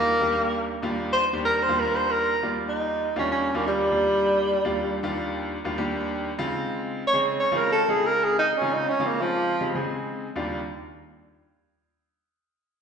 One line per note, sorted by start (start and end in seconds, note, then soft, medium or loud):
0.00 0.17 D#2 medium
0.00 0.17 G3 medium
0.00 0.17 A#3 medium
0.00 0.68 A#3 loud
0.00 0.17 D4 medium
0.00 0.17 F4 medium
0.21 0.72 D#2 medium
0.21 0.72 G3 medium
0.21 0.72 A#3 medium
0.21 0.72 D4 medium
0.21 0.72 G4 medium
0.82 1.23 D#2 medium
0.82 1.23 G3 medium
0.82 1.24 A#3 medium
0.82 1.23 D4 medium
0.82 1.24 F4 medium
1.13 1.28 C5 loud
1.32 1.63 D#2 medium
1.32 1.63 G3 medium
1.32 1.63 A#3 medium
1.32 1.63 D4 medium
1.32 1.63 G4 medium
1.45 1.64 A#4 loud
1.62 1.81 C5 medium
1.68 2.31 D#2 medium
1.68 2.32 G3 medium
1.68 2.32 A#3 medium
1.68 2.32 D4 medium
1.68 2.31 F4 medium
1.80 1.97 A#4 loud
1.95 2.12 C5 medium
2.11 2.43 A#4 loud
2.43 3.06 D#2 medium
2.43 3.06 G3 medium
2.43 3.06 A#3 medium
2.43 3.06 F4 medium
2.43 3.06 D5 medium
2.69 3.16 D#4 medium
3.16 3.48 D#2 medium
3.16 3.48 G3 medium
3.16 3.48 A#3 medium
3.16 3.30 C#4 medium
3.16 3.48 D4 medium
3.16 3.48 F4 medium
3.32 3.57 C#4 medium
3.54 3.86 D#2 medium
3.54 3.86 G3 medium
3.54 3.85 A#3 medium
3.54 3.66 A#3 medium
3.54 3.85 D4 medium
3.54 3.86 F4 medium
3.67 5.12 G3 loud
3.91 4.54 D#2 medium
3.91 4.54 G3 medium
3.91 4.54 A#3 medium
3.91 4.54 D4 medium
3.91 4.54 F4 medium
4.64 4.97 D#2 medium
4.64 4.97 G3 medium
4.64 4.97 A#3 medium
4.64 4.97 D4 medium
4.64 4.97 F4 medium
5.03 5.55 D#2 medium
5.03 5.55 G3 medium
5.03 5.55 A#3 medium
5.03 5.55 D4 medium
5.03 5.55 F4 medium
5.65 5.76 D#2 medium
5.65 5.76 G3 medium
5.65 5.76 A#3 medium
5.65 5.76 D4 medium
5.65 5.76 F4 medium
5.78 6.30 D#2 medium
5.78 6.30 G3 medium
5.78 6.30 A#3 medium
5.78 6.30 D4 medium
5.78 6.30 G4 loud
6.38 7.02 C#3 medium
6.38 7.02 G#3 medium
6.38 7.02 C4 medium
6.38 7.02 D#4 medium
6.38 7.02 F4 loud
7.07 7.22 C#5 loud
7.13 7.45 C#3 medium
7.13 7.45 G#3 medium
7.13 7.45 C4 medium
7.13 7.45 D#4 medium
7.13 7.45 G#4 medium
7.40 7.58 C#5 medium
7.52 7.82 C#3 medium
7.52 7.82 G#3 medium
7.52 7.82 C4 medium
7.52 7.82 D#4 medium
7.52 7.82 F4 medium
7.56 7.72 A#4 medium
7.72 7.91 A4 loud
7.88 8.51 C#3 medium
7.88 8.51 G#3 medium
7.88 8.50 C4 medium
7.88 8.51 D#4 medium
7.88 8.51 F4 medium
7.88 8.08 G#4 medium
8.07 8.25 A#4 loud
8.24 8.38 G#4 loud
8.39 8.59 D#4 loud
8.57 8.93 C#3 medium
8.57 8.93 C4 medium
8.57 8.75 C#4 medium
8.57 8.93 F4 medium
8.62 8.93 G#3 medium
8.62 8.93 D#4 medium
8.73 8.90 D#4 loud
8.89 9.07 C#4 medium
9.00 9.51 C#3 medium
9.00 9.51 G#3 medium
9.00 9.51 C4 medium
9.00 9.51 D#4 medium
9.00 9.51 F4 medium
9.06 9.23 A#3 medium
9.21 9.68 F3 loud
9.60 9.72 C#3 medium
9.60 9.72 G#3 medium
9.60 9.72 C4 medium
9.60 9.72 D#4 medium
9.60 9.72 G4 medium
9.74 10.26 C#3 medium
9.74 10.25 G#3 medium
9.74 10.26 C4 medium
9.74 10.26 D#4 medium
9.74 10.26 G#4 medium
10.36 10.58 D#2 medium
10.36 10.59 G3 medium
10.36 10.59 A#3 medium
10.36 10.59 D4 medium
10.36 10.59 F4 medium